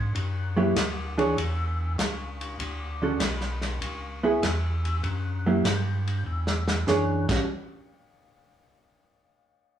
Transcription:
0.00 0.13 G#2 medium
0.15 0.74 F#2 medium
0.15 kick soft
0.15 ride medium
0.56 0.74 F#3 medium
0.56 0.74 A#3 soft
0.56 0.74 E4 medium
0.56 0.74 G4 medium
0.76 1.35 D2 medium
0.76 kick soft
0.76 snare medium
0.76 hi-hat pedal soft
0.76 ride medium
1.18 1.35 E3 medium
1.18 1.35 D4 medium
1.18 1.35 G#4 medium
1.18 1.36 C#5 medium
1.18 ride soft
1.37 1.96 E2 medium
1.37 kick soft
1.37 ride medium
1.98 2.58 C#2 medium
1.98 kick soft
1.98 snare medium
1.98 hi-hat pedal soft
1.98 ride medium
2.41 ride soft
2.59 3.18 D2 medium
2.59 kick soft
2.59 ride medium
3.02 3.19 D3 medium
3.02 3.19 C#4 medium
3.02 3.19 F#4 medium
3.02 3.19 A4 soft
3.20 3.79 B1 medium
3.20 kick soft
3.20 snare medium
3.20 hi-hat pedal medium
3.20 ride medium
3.41 snare soft
3.61 snare soft
3.61 ride soft
3.81 4.41 C#2 medium
3.81 kick soft
3.81 ride medium
4.23 4.40 B3 medium
4.23 4.41 E4 medium
4.23 4.41 G#4 medium
4.43 5.02 E2 medium
4.43 kick soft
4.43 snare medium
4.43 hi-hat pedal medium
4.43 ride medium
4.85 ride soft
5.03 5.63 F#2 medium
5.03 kick soft
5.03 ride soft
5.46 5.63 F#3 medium
5.46 5.63 A#3 medium
5.46 5.63 E4 medium
5.46 5.64 G4 medium
5.65 6.24 G2 medium
5.65 kick soft
5.65 snare medium
5.65 hi-hat pedal soft
5.65 ride medium
6.07 ride soft
6.26 6.85 E2 medium
6.47 snare medium
6.68 snare medium
6.86 7.27 F#2 medium
6.86 7.25 E3 medium
6.86 7.25 D4 medium
6.86 7.25 G#4 medium
6.86 7.25 C#5 medium
6.86 snare soft
6.86 hi-hat pedal medium
7.29 7.46 A1 medium
7.29 7.46 G3 medium
7.29 7.46 C#4 medium
7.29 7.47 F#4 medium
7.29 kick medium
7.29 snare medium
7.29 crash medium

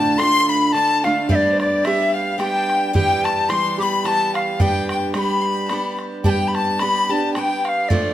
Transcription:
0.00 0.19 D2 medium
0.00 0.19 A2 medium
0.00 0.18 D3 medium
0.00 0.18 A3 medium
0.00 0.20 D4 loud
0.00 0.20 F4 medium
0.00 0.20 A5 loud
0.00 0.21 A5 loud
0.18 0.73 D3 medium
0.18 0.73 A3 medium
0.18 0.75 D4 medium
0.18 0.75 F4 medium
0.18 0.49 C6 loud
0.18 0.50 C6 loud
0.18 bodhran medium
0.49 0.74 B5 loud
0.72 1.04 D3 medium
0.72 1.04 A3 medium
0.72 1.03 D4 medium
0.72 1.02 F4 medium
0.72 1.06 A5 loud
0.72 bodhran soft
1.04 1.28 D3 soft
1.04 1.29 A3 medium
1.04 1.29 D4 soft
1.04 1.29 F4 medium
1.04 1.31 F5 medium
1.04 1.29 F5 loud
1.04 bodhran medium
1.29 1.84 G3 medium
1.29 1.85 B3 medium
1.29 1.85 D4 medium
1.29 1.87 G4 medium
1.29 1.51 D5 loud
1.29 1.36 E5 loud
1.29 bodhran medium
1.35 1.58 D5 loud
1.52 1.59 C5 medium
1.58 1.85 D5 medium
1.58 1.87 D5 medium
1.58 bodhran medium
1.84 2.37 G3 medium
1.84 2.39 B3 medium
1.84 2.39 D4 medium
1.84 2.40 G4 medium
1.84 2.15 E5 loud
1.84 2.14 E5 medium
1.84 bodhran medium
2.14 2.40 F5 medium
2.14 2.38 F5 medium
2.38 2.93 G3 medium
2.38 2.93 B3 medium
2.38 2.94 D4 medium
2.38 2.95 G4 medium
2.38 2.57 G5 medium
2.38 2.91 G5 loud
2.38 bodhran medium
2.55 2.75 G5 medium
2.55 2.59 A5 medium
2.70 bodhran soft
2.74 2.77 F5 medium
2.74 2.94 G5 medium
2.93 3.48 E3 medium
2.93 3.50 G3 medium
2.93 3.51 B3 medium
2.93 3.51 G4 medium
2.93 3.26 G5 loud
2.93 3.27 G5 loud
2.93 bodhran medium
3.24 3.51 A5 loud
3.24 3.52 A5 medium
3.24 bodhran medium
3.49 3.79 E3 medium
3.49 3.80 G3 medium
3.49 3.79 B3 medium
3.49 3.77 G4 medium
3.49 3.78 C6 loud
3.49 3.79 C6 loud
3.49 bodhran medium
3.78 4.04 G3 soft
3.78 4.05 B3 medium
3.78 4.04 G4 medium
3.78 4.07 B5 loud
3.78 3.84 D6 medium
3.83 4.04 B5 medium
4.04 4.59 E3 medium
4.04 4.60 G3 medium
4.04 4.60 B3 medium
4.04 4.61 G4 medium
4.04 4.36 A5 medium
4.04 4.34 A5 loud
4.04 4.09 B5 loud
4.04 bodhran medium
4.34 4.61 F5 medium
4.34 4.63 F5 medium
4.34 bodhran medium
4.60 5.13 G3 medium
4.60 5.14 B3 medium
4.60 5.16 D4 medium
4.60 5.15 G4 loud
4.60 4.89 G5 medium
4.60 4.90 G5 loud
4.60 bodhran loud
4.89 5.13 G5 medium
4.89 4.96 G5 medium
4.89 bodhran medium
5.14 5.68 G3 medium
5.14 5.69 B3 medium
5.14 5.71 D4 medium
5.14 5.71 G4 medium
5.14 5.43 B5 medium
5.14 5.97 B5 medium
5.14 bodhran medium
5.41 5.47 C6 soft
5.45 5.68 B5 medium
5.66 6.23 G3 medium
5.66 5.71 A5 medium
5.66 5.99 B5 medium
5.66 bodhran medium
5.71 6.24 B3 medium
5.71 6.25 D4 medium
5.71 6.25 G4 medium
5.99 bodhran medium
6.24 6.79 G3 medium
6.24 6.80 B3 medium
6.24 6.82 D4 medium
6.24 6.80 G4 loud
6.24 6.52 G5 medium
6.24 6.31 A5 medium
6.24 bodhran medium
6.30 6.49 G5 loud
6.48 6.56 B5 medium
6.55 6.83 A5 medium
6.55 6.81 A5 medium
6.55 bodhran medium
6.79 7.10 G3 medium
6.79 7.10 B3 medium
6.79 7.09 D4 medium
6.79 7.08 G4 medium
6.79 7.10 B5 medium
6.79 7.11 B5 loud
6.79 bodhran medium
7.09 7.35 B3 soft
7.09 7.35 D4 soft
7.09 7.35 G4 medium
7.09 7.34 A5 medium
7.09 7.14 B5 medium
7.13 7.33 A5 medium
7.34 7.90 G3 soft
7.34 7.90 B3 medium
7.34 7.91 D4 medium
7.34 7.66 G5 medium
7.34 7.40 A5 medium
7.34 bodhran medium
7.38 7.91 G4 medium
7.38 7.65 G5 loud
7.64 7.90 F5 medium
7.64 7.70 G5 medium
7.64 bodhran medium
7.69 7.90 F5 medium
7.89 8.14 F3 medium
7.89 8.14 A3 medium
7.89 8.14 D4 medium
7.89 8.14 F4 medium
7.89 8.14 D5 loud
7.89 8.14 D5 medium
7.89 bodhran medium

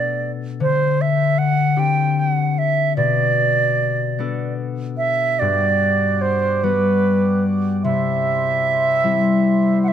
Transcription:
0.00 0.65 B2 soft
0.00 0.37 A3 soft
0.00 1.82 B3 soft
0.00 1.76 D4 soft
0.00 1.66 A4 soft
0.00 0.32 D5 medium
0.60 3.02 D3 soft
0.60 1.03 C5 medium
1.01 1.40 E5 medium
1.38 1.81 F#5 medium
1.76 3.03 C4 soft
1.76 4.19 D4 soft
1.76 4.12 G4 soft
1.76 2.21 G5 medium
2.19 2.60 F#5 medium
2.58 2.96 E5 medium
2.97 5.45 B2 medium
2.97 4.54 D5 medium
4.19 6.63 B3 soft
4.19 7.00 D4 soft
4.19 6.40 A4 soft
4.97 5.41 E5 medium
5.39 7.90 G2 soft
5.39 7.82 G3 medium
5.39 7.83 F#4 soft
5.39 7.82 D5 medium
5.39 6.23 D5 medium
6.21 6.65 C5 medium
6.63 7.90 G3 soft
6.63 7.90 B3 soft
6.63 9.10 F#4 soft
6.63 7.45 B4 medium
7.84 9.93 C3 medium
7.84 9.93 G3 medium
7.84 9.93 E4 soft
7.84 9.93 C5 medium
7.84 9.79 E5 medium
9.04 9.93 G3 soft
9.04 9.93 C4 soft
9.04 9.93 E4 soft
9.83 9.89 F#5 medium
9.88 9.93 E5 medium

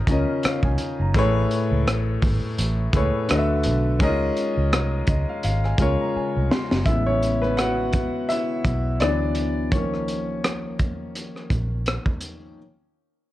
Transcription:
0.00 1.16 D#3 loud
0.00 0.09 C#4 medium
0.00 0.09 F4 medium
0.00 0.11 A#4 medium
0.00 0.11 D#5 loud
0.07 0.24 C#2 medium
0.07 1.02 C#3 medium
0.07 1.02 C#4 medium
0.07 1.02 F4 medium
0.07 1.03 A#4 medium
0.07 kick medium
0.07 closed hi-hat medium
0.11 1.04 D#5 medium
0.43 0.63 F5 medium
0.43 muted fingered electric bass stroke soft
0.43 cross-stick loud
0.43 closed hi-hat medium
0.63 0.76 C2 medium
0.63 0.98 G#5 medium
0.63 kick medium
0.78 closed hi-hat medium
1.00 1.12 F#1 medium
1.00 1.34 A#5 medium
1.14 1.44 A1 loud
1.14 2.40 A2 loud
1.14 2.40 A3 medium
1.14 2.41 G#4 medium
1.14 2.42 B4 medium
1.14 kick loud
1.14 closed hi-hat medium
1.19 2.42 C#5 loud
1.51 closed hi-hat medium
1.71 1.87 C#2 medium
1.87 2.16 A1 medium
1.87 cross-stick loud
1.87 closed hi-hat medium
2.22 2.39 G#1 medium
2.22 kick medium
2.22 open hi-hat soft
2.58 2.88 A1 medium
2.58 closed hi-hat medium
2.93 3.10 C#2 medium
2.93 3.28 A2 medium
2.93 3.28 A3 medium
2.93 3.30 G#4 medium
2.93 3.29 B4 medium
2.93 3.30 C#5 medium
2.93 kick medium
2.93 closed hi-hat medium
3.28 3.67 D2 medium
3.28 3.91 D3 medium
3.28 3.92 A3 medium
3.28 3.92 F#4 medium
3.28 3.93 B4 medium
3.28 cross-stick loud
3.28 closed hi-hat medium
3.32 3.38 D#5 medium
3.38 3.96 E5 medium
3.63 4.01 B1 medium
3.63 cross-stick soft
3.63 closed hi-hat medium
3.99 4.30 C#2 loud
3.99 5.26 G#3 medium
3.99 5.25 C#4 loud
3.99 4.08 D#4 medium
3.99 5.27 A#4 medium
3.99 5.06 D#5 loud
3.99 kick loud
3.99 closed hi-hat medium
4.08 5.29 F4 medium
4.37 closed hi-hat medium
4.57 4.73 C#2 medium
4.73 5.02 C2 medium
4.73 cross-stick loud
4.73 closed hi-hat medium
5.07 5.24 C#2 medium
5.07 5.26 D#5 medium
5.07 kick medium
5.07 closed hi-hat medium
5.29 5.43 F5 medium
5.43 5.73 G#1 medium
5.43 5.62 F5 medium
5.43 closed hi-hat medium
5.64 5.97 G#5 medium
5.64 cross-stick soft
5.78 5.95 C#2 medium
5.78 6.73 C#3 medium
5.78 6.73 G#3 medium
5.78 6.74 F4 medium
5.78 6.74 A#4 medium
5.78 6.75 C#5 medium
5.78 kick medium
5.78 closed hi-hat medium
6.00 6.14 A#5 medium
6.16 6.49 G#5 medium
6.16 muted fingered electric bass stroke soft
6.37 6.49 C2 medium
6.51 6.84 C6 medium
6.51 snare medium
6.71 6.84 F#1 medium
6.71 snare medium
6.86 8.09 A1 medium
6.86 8.96 C#3 soft
6.86 8.97 G#3 soft
6.86 7.43 B3 medium
6.86 7.06 E4 medium
6.86 7.06 E5 medium
6.86 kick loud
6.86 closed hi-hat medium
7.06 7.40 C#4 medium
7.06 7.43 C#5 medium
7.23 closed hi-hat medium
7.42 7.57 B3 medium
7.42 7.58 B4 medium
7.42 cross-stick soft
7.57 8.26 F#4 medium
7.57 8.31 F#5 loud
7.57 cross-stick loud
7.57 closed hi-hat medium
7.93 kick medium
7.93 closed hi-hat medium
8.29 8.97 E4 medium
8.29 9.02 E5 loud
8.29 closed hi-hat medium
8.65 9.03 B1 medium
8.65 kick medium
8.65 closed hi-hat medium
9.00 9.73 D2 medium
9.00 9.69 E3 soft
9.00 9.69 F#3 soft
9.00 9.70 B3 medium
9.00 9.69 D4 medium
9.00 9.74 D5 medium
9.00 cross-stick loud
9.00 closed hi-hat medium
9.35 closed hi-hat medium
9.72 10.95 C#2 medium
9.72 10.22 D#3 soft
9.72 10.22 F3 soft
9.72 10.22 A#3 medium
9.72 11.83 C#4 medium
9.72 11.82 C#5 medium
9.72 kick loud
9.72 closed hi-hat medium
9.94 cross-stick soft
10.08 closed hi-hat medium
10.44 cross-stick loud
10.44 closed hi-hat medium
10.79 kick medium
10.79 closed hi-hat medium
11.15 closed hi-hat medium
11.36 cross-stick soft
11.50 11.97 A#1 medium
11.50 kick medium
11.50 closed hi-hat medium
11.86 cross-stick loud
11.86 closed hi-hat medium
12.06 kick medium
12.21 closed hi-hat medium

